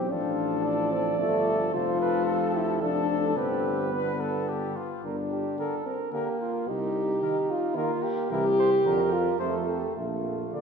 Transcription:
0.00 0.10 B1 soft
0.00 0.12 E3 soft
0.00 0.12 C4 medium
0.00 0.13 G4 soft
0.10 1.16 A1 medium
0.10 1.18 F3 soft
0.10 0.93 D4 medium
0.10 0.65 F4 soft
0.10 1.19 A4 soft
0.64 1.75 D5 medium
0.92 1.18 C4 medium
1.18 1.76 G1 soft
1.18 1.73 F3 soft
1.18 1.59 A3 medium
1.18 1.73 A4 soft
1.74 2.81 F1 medium
1.74 2.79 F3 medium
1.74 2.53 F4 medium
1.74 2.80 A4 soft
1.74 2.00 C5 soft
2.00 2.25 B4 medium
2.26 2.55 A4 medium
2.53 2.81 E4 medium
2.53 2.83 G4 medium
2.81 3.36 F1 medium
2.81 3.36 F3 soft
2.81 3.38 D4 medium
2.81 3.38 A4 medium
2.81 3.39 A4 soft
3.36 4.74 G1 medium
3.36 3.91 D3 soft
3.36 3.94 C4 medium
3.36 3.92 G4 soft
3.36 4.76 B4 medium
3.93 4.75 D3 soft
3.93 4.77 B3 medium
3.93 4.22 B4 medium
4.21 4.50 A4 medium
4.49 4.78 G4 soft
4.76 5.04 F4 soft
5.04 5.50 G1 soft
5.04 5.82 D4 medium
5.04 5.17 A#4 soft
5.32 5.58 G4 soft
5.59 5.75 D3 soft
5.59 5.88 A4 soft
5.59 5.75 A#4 soft
5.85 5.98 C4 soft
5.85 6.12 A#4 soft
6.12 6.28 D3 soft
6.12 6.70 A#3 medium
6.12 6.40 G4 soft
6.12 6.29 A#4 soft
6.41 6.68 F4 soft
6.68 7.13 C2 medium
6.68 7.21 D#4 soft
6.68 7.51 G4 medium
7.22 7.38 D#3 soft
7.22 7.77 D#4 medium
7.22 7.38 A#4 soft
7.50 7.77 F4 medium
7.76 7.92 D#3 soft
7.76 8.30 A#3 medium
7.76 8.04 F4 medium
7.76 7.92 A#4 soft
8.03 8.31 G4 medium
8.31 8.76 C2 medium
8.31 8.47 E3 soft
8.31 8.44 E4 medium
8.31 9.14 G4 medium
8.31 8.47 A#4 soft
8.59 8.71 C5 medium
8.85 9.30 F2 medium
8.85 9.01 D3 medium
8.85 9.01 A#4 soft
8.85 9.41 A#4 medium
9.12 9.39 F4 medium
9.39 9.87 F2 medium
9.39 9.55 F3 soft
9.39 9.95 A3 medium
9.39 9.68 A4 medium
9.39 9.55 C5 soft
9.68 9.95 G4 soft
9.96 10.44 A#1 soft
9.96 10.55 A3 medium
9.96 10.61 F4 soft
10.53 10.61 D3 soft
10.53 10.61 A#3 soft
10.53 10.61 D5 soft

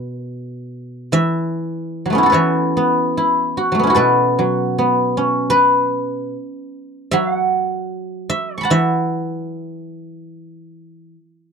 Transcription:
0.00 1.13 B2 soft
0.00 0.34 A4 medium
0.00 0.11 B4 medium
0.11 0.36 A#4 medium
0.36 1.11 A4 medium
1.12 2.32 E3 soft
1.12 2.34 E5 medium
2.06 2.24 F#3 soft
2.10 2.36 A3 soft
2.10 2.76 B3 soft
2.15 3.83 C#4 soft
2.15 3.17 E4 soft
2.23 3.57 F#4 soft
2.23 3.94 A4 soft
2.30 4.74 E3 medium
2.30 3.95 B4 soft
2.30 4.23 C#5 soft
2.34 4.06 E5 medium
2.77 3.78 B3 soft
3.17 3.86 E4 soft
3.57 3.89 F#4 soft
3.72 3.93 F#3 soft
3.72 4.02 A3 soft
3.79 4.78 B3 soft
3.79 5.17 C#4 soft
3.87 6.48 E4 soft
3.87 6.33 F#4 soft
3.95 6.34 B2 medium
3.95 6.14 A4 soft
3.95 5.50 B4 medium
4.39 5.95 F#3 soft
4.78 6.35 B3 soft
5.17 6.75 C#4 soft
5.50 7.55 B4 medium
7.11 9.49 F#3 medium
7.11 7.34 E5 medium
7.34 8.64 F#5 medium
8.30 8.55 E5 medium
8.55 8.71 C#5 medium
8.55 9.83 C#6 soft
8.61 10.25 F#5 medium
8.61 10.08 A5 soft
8.61 9.96 B5 soft
8.70 11.14 E3 medium
8.70 11.11 E5 medium

